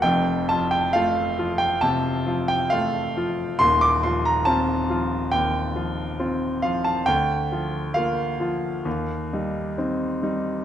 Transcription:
<<
  \new Staff \with { instrumentName = "Grand piano" } { \time 4/4 \key f \mixolydian \tempo 4 = 68 g''8 a''16 g''16 f''8. g''16 a''8. g''16 f''4 | c'''16 d'''16 c'''16 bes''16 a''4 g''4. f''16 a''16 | g''4 f''2 r4 | }
  \new Staff \with { instrumentName = "Grand piano" } { \time 4/4 \key f \mixolydian <f,, f,>8 <f f'>8 <a f'>8 <f f'>8 c8 <f f'>8 <a f'>8 <f f'>8 | <ees,, ees,>8 <f f'>8 <c' f'>8 <f f'>8 ees,8 <f f'>8 <c' f'>8 <f f'>8 | d,8 <f f'>8 <bes f'>8 <f f'>8 ees,8 <g ees'>8 <c' ees'>8 <g ees'>8 | }
>>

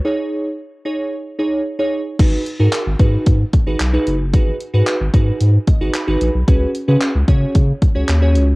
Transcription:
<<
  \new Staff \with { instrumentName = "Synth keys" } { \time 4/4 \key gis \minor \tempo 4 = 112 << { r1 | r1 | r2 r8 dis''8 b''4 | r1 | } \\ { <dis' gis' cis''>8. r8. <dis' gis' cis''>8 r8 <dis' gis' cis''>8 r16 <dis' gis' cis''>8 r16 | <dis' fis' gis' b'>8 r16 <dis' fis' gis' ais'>8 r16 <dis' fis' gis' b'>8. r8 <dis' fis' gis' b'>16 r16 <dis' fis' gis' b'>8 r16 | <dis' fis' gis' b'>8 r16 <dis' fis' gis' b'>8 r16 <dis' fis' gis' b'>8. r8 <dis' fis' gis' b'>16 r16 <dis' fis' gis' b'>8 r16 | <cis' fis' gis' b'>8 r16 <cis' fis' gis' b'>8 r16 <cis' fis' gis' cis''>8. r8 <cis' fis' gis' cis''>16 r16 <cis' fis' gis' cis''>8 r16 | } >> }
  \new Staff \with { instrumentName = "Sub bass" } { \clef bass \time 4/4 \key gis \minor r1 | gis,,8 r16 gis,16 r16 gis,,16 gis,8 gis,8 r16 gis,,16 b,,8 fis,,8 | gis,,8 r16 gis,16 r16 gis,,16 gis,8 gis,8 r16 gis,,16 r16 gis,,16 ais,,16 b,,16 | cis,8 r16 cis16 r16 cis,16 cis8 cis8 r16 cis,16 dis,8 cis,8 | }
  \new DrumStaff \with { instrumentName = "Drums" } \drummode { \time 4/4 r4 r4 r4 r4 | <cymc hh bd>8 hh8 <hc hh>8 <hh bd>8 <hh bd>8 <hh bd>8 <hc hh>8 hh8 | <hh bd>8 hh8 <hc hh>8 <hh bd>8 hh8 <hh bd>8 <hc hh>8 hh8 | <hh bd>8 hh8 <hc hh>8 <hh bd>8 <hh bd>8 <hh bd>8 <hc hh>8 hh8 | }
>>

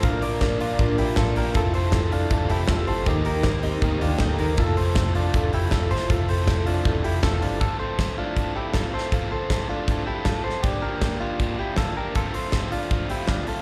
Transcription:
<<
  \new Staff \with { instrumentName = "Clean electric guitar" } { \time 4/4 \key f \major \tempo 4 = 158 <f' bes'>8 <bes' d''>4 <d' f'>4 <e' g'>8 <f' a'>8 <g' bes'>8 | <f' a'>8 <a' c''>4 <d' f'>4 <e' g'>8 <f' a'>8 <a' c''>8 | <ees' g'>8 <g' bes'>4 <c' ees'>4 <d' f'>8 <ees' g'>8 <g' bes'>8 | <f' a'>8 <a' c''>4 <d' f'>4 <e' g'>8 <f' a'>8 <a' c''>8 |
<f' a'>8 <a' c''>4 <d' f'>4 <e' g'>8 <f' a'>8 <d' f'>8 | <f' a'>8 <a' c''>4 <d' f'>4 <e' g'>8 <f' a'>8 <a' c''>8 | <f' a'>8 <a' c''>4 <d' f'>4 <e' g'>8 <f' a'>8 <a' c''>8 | <d' g'>8 <g' bes'>4 <d' f'>4 <e' g'>8 <f' a'>8 <g' bes'>8 |
<f' a'>8 <a' c''>4 <d' f'>4 <e' g'>8 <d' f'>8 <f' a'>8 | }
  \new Staff \with { instrumentName = "Synth keys" } { \time 4/4 \key f \major << { r1 | r1 | r2. bes''4 | r1 |
r1 | r1 | r1 | r1 |
r1 | } \\ { <d' f' bes'>8 <d' f' bes'>8 <d' f' bes'>8 <d' f' bes'>8 <d' f' bes'>8 <d' f' bes'>8 <d' f' bes'>8 <d' f' bes'>8 | <e' f' a'>8 <e' f' a'>8 <e' f' a'>8 <e' f' a'>8 <e' f' a'>8 <e' f' a'>8 <e' f' g'>8 <e' f' a'>8 | <ees' g' bes'>8 <ees' g' bes'>8 <ees' g' c''>8 <ees' g' bes'>8 <ees' g' bes'>8 <ees' g' bes'>8 <ees' g' a'>8 <ees' g' bes'>8 | <e' f' a'>8 <e' f' a'>8 <e' f' a'>8 <e' f' a'>8 <e' f' a'>8 <e' f' a'>8 <e' f' a'>8 <e' f' a'>8 |
<e' f' a'>8 <e' f' a'>8 <e' f' a'>8 <e' f' a'>8 <e' f' a'>8 <e' f' a'>8 <e' f' a'>8 <e' f' g'>8 | r1 | r1 | r1 |
r1 | } >> }
  \new Staff \with { instrumentName = "Overdriven electric guitar" } { \time 4/4 \key f \major <bes, f bes d' f'>8 <bes d' f'>8 <f bes d' f'>8 <bes d' f'>8 <bes, f bes d' f'>8 <bes d' f'>8 <f bes d' f'>8 <bes d' f'>8 | <f, c e a c' a'>8 <e a c' a'>8 <e a c' a'>8 <e a c' a'>8 <f, c e a c' a'>8 <e a c' a'>8 <e a c' a'>8 <e a c' a'>8 | <ees bes ees' g'>8 <bes ees' g'>8 <ees bes ees' g'>8 <bes ees' g'>8 <ees bes ees' g'>8 <bes ees' g'>8 <ees bes ees' g'>8 <bes ees' g'>8 | <f, c e a c' a'>8 <e a c' a'>8 <e a c' a'>8 <e a c' a'>8 <f, c e a c' a'>8 <e a c' a'>8 <e a c' a'>8 <e a c' a'>8 |
<f, c e a c' a'>8 <e a c' a'>8 <e a c' a'>8 <e a c' a'>8 <f, c e a c' a'>8 <e a c' a'>8 <e a c' a'>8 <e a c' a'>8 | <f, c e a c' a'>8 <e a c' a'>8 <f, c e a c' a'>8 <e a c' a'>8 <e a c' a'>8 <e a c' a'>8 <f, c e a c' a'>8 <e a c' a'>8 | <f, c e a c' a'>8 <e a c' a'>8 <f, c e a c' a'>8 <e a c' a'>8 <e a c' a'>8 <e a c' a'>8 <f, c e a c' a'>8 <e a c' a'>8 | <g, d f bes d' g'>8 <f bes d' g'>8 <g, d f bes d' g'>8 <f bes d' g'>8 <f bes d' g'>8 <f bes d' g'>8 <g, d f bes d' g'>8 <f bes d' g'>8 |
<d f a c' f'>8 <a c' f'>8 <d f a c' f'>8 <a c' f'>8 <f a c' f'>8 <a c' f'>8 <d f a c' f'>8 <a c' f'>8 | }
  \new Staff \with { instrumentName = "Fingered electric bass" } { \clef bass \time 4/4 \key f \major bes,,2 a,,8 bes,,8 a,,8 bes,,8 | f,,2 e,,8 f,,8 e,,8 g,,8 | ees,2 d,8 ees,8 d,8 ees,8 | f,,2 e,,8 f,,8 e,,8 g,,8 |
f,,2 e,,8 f,,8 e,,8 g,,8 | r1 | r1 | r1 |
r1 | }
  \new DrumStaff \with { instrumentName = "Drums" } \drummode { \time 4/4 <hh bd>8 hho8 <hh bd sn>8 hho8 <hh bd>8 hho8 <hh bd sn>8 hho8 | <hh bd>8 hho8 <hh bd sn>8 hho8 <hh bd>8 hho8 <hh bd sn>8 hho8 | <hh bd>8 hho8 <hh bd sn>8 hho8 <hh bd>8 hho8 <hh bd sn>8 hho8 | <hh bd>8 hho8 <hh bd sn>8 hho8 <hh bd>8 hho8 <hh bd sn>8 hho8 |
<hh bd>8 hho8 <hh bd sn>8 hho8 <hh bd>8 hho8 <hh bd sn>8 hho8 | <hh bd>4 <hh bd sn>4 <hh bd>4 <hh bd sn>4 | <hh bd>4 <hh bd sn>4 <hh bd>4 <hh bd sn>4 | <hh bd>4 <hh bd sn>4 <hh bd>4 <hh bd sn>4 |
<hh bd>8 hho8 <hh bd sn>8 hho8 <hh bd>8 hho8 <hh bd sn>8 hho8 | }
>>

